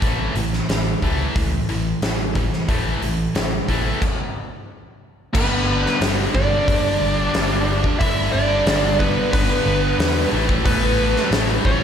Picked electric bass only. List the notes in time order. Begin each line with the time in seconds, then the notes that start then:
0.02 A1
0.35 A1
0.69 A1
1.02 C#2
1.36 C#2
1.69 A1
2.02 A1
2.69 A1
3.02 A1
3.36 A1
3.68 A1
5.35 G1
6.01 G1
6.34 G1
6.68 G1
7.01 G1
7.35 G1
8.01 G1
8.34 G1
8.66 G1
9.33 G1
9.66 G1
9.99 E2
10.33 A1
10.65 A1
11.31 A1
11.65 A1